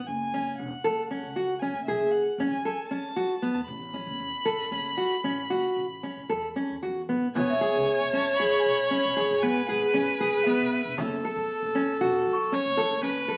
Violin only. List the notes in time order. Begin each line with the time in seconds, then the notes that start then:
0.06 G#5
0.58 F#5
1.08 F#5
1.59 G#5
1.85 E5
2.11 F#5
2.51 G#5
2.88 A5
3.54 A5
3.65 B5
7.35 G#5
8.13 A5
8.38 B5
8.89 B5
9.40 G#5
9.66 F#5
9.93 G#5
10.44 E5
10.72 E5